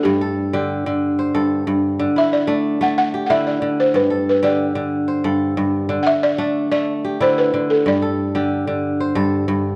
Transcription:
<<
  \new Staff \with { instrumentName = "Balafon" } { \time 12/8 \key g \major \tempo 4. = 123 g'4~ g'32 r1 r8. r32 | r8 e''8 d''4. fis''8 fis''8.~ fis''32 fis''32 e''8 d''4 c''8 | b'4 b'8 d''2. r4. | r16. fis''32 e''8 d''4. d''4. c''8 b'4 a'8 |
d''1~ d''4 r4 | }
  \new Staff \with { instrumentName = "Kora" } { \time 12/8 \key g \major r8 a'4 g'4. r8 c''8 a'4. r8 | r8 e'4 d'4. r8 g'8 e'4. r8 | r8 a'4 g'4. r8 c''8 a'4. r8 | r4. d'4. r8 g'8 e'4. r8 |
r8 a'4 g'4. r8 c''8 a'4. r8 | }
  \new Staff \with { instrumentName = "Kora" } { \clef bass \time 12/8 \key g \major g,4 r8 d4 d4 r8 g,4 g,4 | d4 r8 a4 a4 r8 d4 d4 | g,4 r8 d4 d4 r8 g,4 g,4 | d4 r8 a4 a4 r8 d4 d4 |
g,4 r8 d4 d4 r8 g,4 g,4 | }
>>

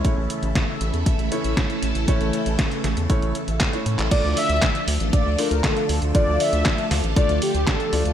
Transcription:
<<
  \new Staff \with { instrumentName = "Analog polysynth" } { \time 4/4 \key a \lydian \tempo 4 = 118 r1 | r1 | \key d \minor d''8 e''4 r8 d''8 bes'8 a'8. r16 | d''8 e''4 r8 d''8 g'8 a'8. r16 | }
  \new Staff \with { instrumentName = "Grand piano" } { \time 4/4 \key a \lydian <a cis' e' cis''>2~ <a cis' e' cis''>8 <a cis' e' cis''>4. | <a cis' e' cis''>2 <a cis' e' cis''>8 r8. <a cis' e' cis''>8. | \key d \minor <a d' f' d''>2~ <a d' f' d''>8 <a d' f' d''>4. | <a d' f' d''>2 <a d' f' d''>8 r4 <a d' f' d''>8 | }
  \new Staff \with { instrumentName = "String machine" } { \time 4/4 \key a \lydian <cis e a e' a'>1~ | <cis e a e' a'>1 | \key d \minor <d f a f' a'>1~ | <d f a f' a'>1 | }
  \new Staff \with { instrumentName = "Analog synth bass" } { \clef bass \time 4/4 \key a \lydian r16 a,,16 r16 a,,16 r8 a,,16 e,16 r16 a,,16 r16 a,,16 r8 a,,16 a,,16 | r16 a,,16 r16 a,,16 r8 a,,16 e,16 r16 a,,16 r16 a,,16 r8 a,16 a,,16 | \key d \minor r16 d,16 r16 d,16 r8 d,16 a,,16 r16 d,16 r16 d,16 r8 d,16 d,16 | r16 d,16 r16 d,16 r8 d,16 a,,16 r16 d,16 r16 d,16 r8 d,16 d,16 | }
  \new DrumStaff \with { instrumentName = "Drums" } \drummode { \time 4/4 <hh bd>8 hh16 hh16 <hh bd sn>8 hh16 hh16 <hh bd>16 hh16 hh16 hh16 <hh bd sn>16 hh16 hh16 hh16 | <hh bd>16 hh16 hh16 hh16 <hh bd sn>16 hh16 <hh sn>16 hh16 <hh bd>16 hh16 hh16 hh16 <hc hh bd sn>16 hh16 hh16 <hc hh>16 | <cymc hh bd>8 hho16 hh16 <hc hh bd sn>16 hh16 hho16 hh16 <hh bd>8 hho16 hh16 <hc hh bd sn>16 hh16 hho16 hh16 | <hh bd>8 hho16 hh16 <hc hh bd sn>16 hh16 <hho sn>16 hh16 <hh bd>16 hh16 hho16 hh16 <hc hh bd sn>16 hh16 hho16 hh16 | }
>>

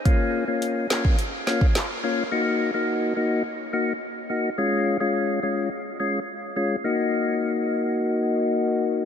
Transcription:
<<
  \new Staff \with { instrumentName = "Tonewheel organ" } { \time 4/4 \key ees \minor \tempo 4 = 106 <bes des' f'>8. <bes des' f'>8. <bes des' f'>8 r8 <bes des' f'>16 r8. <bes des' f'>16 r16 | <bes ees' ges'>8. <bes ees' ges'>8. <bes ees' ges'>8 r8 <bes ees' ges'>16 r8. <bes ees' ges'>16 r16 | <aes des' f'>8. <aes des' f'>8. <aes des' f'>8 r8 <aes des' f'>16 r8. <aes des' f'>16 r16 | <bes ees' ges'>1 | }
  \new DrumStaff \with { instrumentName = "Drums" } \drummode { \time 4/4 <hh bd>4 hh8 <hc sn>16 bd16 hh8 sn16 bd16 <hc hh sn>4 | r4 r4 r4 r4 | r4 r4 r4 r4 | r4 r4 r4 r4 | }
>>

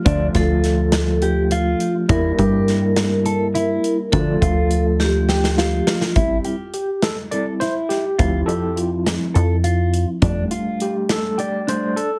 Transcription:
<<
  \new Staff \with { instrumentName = "Vibraphone" } { \time 7/8 \key d \minor \tempo 4 = 103 f'8 a'4. g'8 f'4 | bes'2.~ bes'8 | a'4. g'4. f'8 | r2. r8 |
r2. r8 | r2. r8 | }
  \new Staff \with { instrumentName = "Clean electric guitar" } { \time 7/8 \key d \minor d'8 f'4 r8 g'8 f'4 | e'8 g'4 r8 a'8 e'4 | d'8 f'4 r8 g'8 f'4 | e'8 g'4 r8 a'8 e'4 |
f'8 g'4 r8 a'8 f'4 | d'8 f'4 r8 g'8 d'4 | }
  \new Staff \with { instrumentName = "Tine electric piano" } { \time 7/8 \key d \minor << { <f a d' f'>2.~ <f a d' f'>8 | <g bes d' e'>2.~ <g bes d' e'>8 | <f a d' f'>2.~ <f a d' f'>8 | r4 g'8 a'8 d''8 c''8 g'8~ |
g'8 a'8 f'8 r2 | r4 g'8 a'8 d''8 c''8 a'8 | } \\ { r2. r8 | r2. r8 | r2. r8 | <g c' e'>8 r4. <g c' e'>8 r4 |
<f c' e'>2.~ <f c' e'>8 | <g a d'>2~ <g a d'>8 <g a d'>8 r8 | } >> }
  \new Staff \with { instrumentName = "Analog synth bass" } { \clef bass \time 7/8 \key d \minor d,8 d,2. | e,8 g,2. | d,8 d,2. | a,,8 r2. |
d,8 f,4. f,4. | f,8 r2. | }
  \new DrumStaff \with { instrumentName = "Drums" } \drummode { \time 7/8 <hh bd>8 <hh bd sn>8 <hh sn>8 <hh sn>8 hh8 hh8 hh8 | <hh bd>8 <hh bd>8 <hh sn>8 <hh sn>8 hh8 hh8 hh8 | <hh bd>8 <hh bd>8 hh8 sn8 sn16 sn16 sn8 sn16 sn16 | <hh bd>8 hh8 hh8 <hh sn>8 hh8 <hh sn>8 <hh sn>8 |
<hh bd>8 hh8 hh8 <hh sn>8 hh8 hh8 hh8 | <hh bd>8 hh8 hh8 <hh sn>8 hh8 hh8 hh8 | }
>>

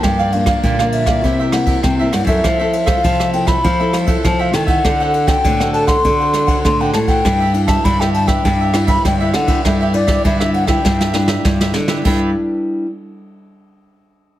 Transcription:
<<
  \new Staff \with { instrumentName = "Flute" } { \time 4/4 \key g \major \tempo 4 = 100 g''8 f''8 f''8 e''4 fis''8 g''16 e''16 fis''16 e''16~ | e''8. f''8. g''16 b''8. r8 a''16 f''16 g''16 fis''16~ | fis''8. g''8. a''16 c'''4~ c'''16 c'''16 g''16 a''16 g''16~ | g''8. a''16 b''16 g''16 a''16 g''4 b''16 g''16 e''16 fis''8 |
e''16 e''16 d''8 e''16 e''16 fis''16 g''4~ g''16 r4 | r1 | }
  \new Staff \with { instrumentName = "Cavaquinho" } { \time 4/4 \key g \major <g' bes' d'' f''>16 <bes' d'' f''>16 r16 <bes' d'' f''>16 <g' bes' d'' f''>16 <bes' d'' f''>8 <bes' d'' f''>16 <e' bes' c'' e''>16 <bes' c'' e''>16 <e' bes' c'' e''>16 <bes' c'' e''>8 <bes' c'' e''>16 r16 <bes' c'' e''>16 | <f' a' c'' e''>16 <a' c'' e''>16 r16 <a' c'' e''>16 <f' a' c'' e''>16 <a' c'' e''>8 <a' c'' e''>16 <f' a' c'' e''>16 <a' c'' e''>16 <f' a' c'' e''>16 <a' c'' e''>8 <a' c'' e''>16 r16 <a' c'' e''>16 | <d' a' c'' fis''>16 <a' c'' fis''>16 r16 <a' c'' fis''>16 <d' a' c'' fis''>16 <a' c'' fis''>8 <a' c'' fis''>16 <d' a' c'' fis''>16 <a' c'' fis''>16 <d' a' c'' fis''>16 <a' c'' fis''>8 <a' c'' fis''>16 r16 <a' c'' fis''>16 | <d' g' b' e''>16 <g' b' e''>16 r16 <g' b' e''>16 <d' g' b' e''>16 <g' b' e''>8 <g' b' e''>16 <d' g' b' e''>16 <g' b' e''>16 <d' g' b' e''>16 <g' b' e''>8 <g' b' e''>16 r16 <g' b' e''>16 |
<d' g' b' e''>16 <g' b' e''>16 r16 <g' b' e''>16 <d' g' b' e''>16 <g' b' e''>8 <g' b' e''>16 <d' g' b' e''>16 <g' b' e''>16 <d' g' b' e''>16 <g' b' e''>8 <g' b' e''>16 r16 <g' b' e''>16 | <d' g' b' e''>8 r2. r8 | }
  \new Staff \with { instrumentName = "Nylon-string guitar" } { \time 4/4 \key g \major << { <f bes d'>8 <f bes d'>8. <f bes d'>8 <g bes e'>8. <g bes e'>8. <g bes e'>8 <c' e' a'>16~ | <c' e' a'>16 <c' e' a'>8 <c' a'>8. <c' e' a'>8. <c' e' a'>8 <c' e' a'>8. <c' e' a'>8 | <c' fis' a'>8. <c' fis' a'>8 <c' fis' a'>8. <c' fis' a'>8. <c' fis' a'>8 <c' fis' a'>8. | <d' e' b'>16 r16 <d' e' b'>8. <d' e' b'>8. <d' e' b'>8 <d' e' b'>8 r16 <d' e' b'>8 <d' e' b'>16 |
<d' e' b'>16 r16 <d' e' b'>8 r16 <d' e' b'>8 <d' e' b'>16 <d' e' b'>8 <d' e' b'>8 r16 <d' e' b'>8 <d' e' b'>16~ | <d' e' b'>8 r2. r8 | } \\ { g,4 d4 c4 g,4 | f4 c4 f4 c4 | d4 a,4 d4 a,4 | g4 d4 g4 d4 |
g4 d4 g4 d4 | <g d' e' b'>8 r2. r8 | } >> }
  \new Staff \with { instrumentName = "Nylon-string guitar" } { \clef bass \time 4/4 \key g \major g,4 bes,4 c4 c8 g,16 fis,16 | f4 f4 f4 f8 ees8 | d4 d4 d4 d8 a,8 | g,4 g,4 g,4 g,8 d8 |
g,4 g,4 g,4 g,8 d8 | g,8 r2. r8 | }
  \new DrumStaff \with { instrumentName = "Drums" } \drummode { \time 4/4 <bd cymr ss>8 cymr16 <bd cymr ss>16 <bd cymr>16 ss16 cymr16 <bd cymr ss>16 <bd cymr>8 <cymr ss>16 <bd cymr>16 <bd cymr ss>8 <cymr ss>16 <bd cymr>16 | <bd cymr ss>8 cymr16 <bd cymr ss>16 <bd cymr>16 ss16 cymr16 <bd cymr ss>16 <bd cymr>8 <cymr ss>16 <bd cymr>16 <bd cymr ss>8 <cymr ss>16 <bd cymr>16 | <bd cymr ss>8 cymr16 <bd cymr ss>16 <bd cymr>16 ss16 cymr16 <bd cymr ss>16 <bd cymr>8 <cymr ss>16 <bd cymr>16 <bd cymr ss>8 <cymr ss>16 <bd cymr>16 | <bd cymr ss>8 cymr16 <bd cymr ss>16 <bd cymr>16 ss16 cymr16 <bd cymr ss>16 <bd cymr>8 <cymr ss>16 <bd cymr>16 <bd cymr ss>8 <cymr ss>16 <bd cymr>16 |
<bd cymr ss>8 cymr16 <bd cymr ss>16 <bd cymr>16 ss16 cymr16 <bd cymr ss>16 <bd sn>16 sn16 sn16 sn16 <bd sn>16 sn16 sn16 sn16 | <cymc bd>4 r4 r4 r4 | }
>>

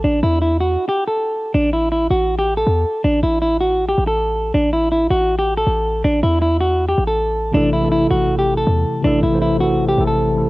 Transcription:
<<
  \new Staff \with { instrumentName = "Clean electric guitar" } { \time 4/4 \key a \dorian \tempo 4 = 160 d'8 e'8 e'8 fis'8. g'8 a'4~ a'16 | d'8 e'8 e'8 fis'8. g'8 a'4~ a'16 | d'8 e'8 e'8 fis'8. g'8 a'4~ a'16 | d'8 e'8 e'8 fis'8. g'8 a'4~ a'16 |
d'8 e'8 e'8 fis'8. g'8 a'4~ a'16 | d'8 e'8 e'8 fis'8. g'8 a'4~ a'16 | d'8 e'8 e'8 fis'8. g'8 a'4~ a'16 | }
  \new Staff \with { instrumentName = "Tine electric piano" } { \time 4/4 \key a \dorian r1 | r1 | r1 | r1 |
r1 | <c e a e' a'>8 r16 <c e a e' a'>4~ <c e a e' a'>16 r2 | <c e a e' a'>8 r16 <c e a e' c''>8 r16 <c e a e' a'>8 r8 <c e a e' a'>8 r8 <c e a e' a'>16 r16 | }
  \new Staff \with { instrumentName = "808-style bass" } { \clef bass \time 4/4 \key a \dorian a,,8 e,4. r2 | a,,4. a,,4. e,8 r8 | a,,8 a,,2 a,,4. | a,,4. a,,4. a,,4 |
a,,8 e,2 a,,4. | a,,4. a,,4. e,8 r8 | a,,8 a,,2 a,,4. | }
>>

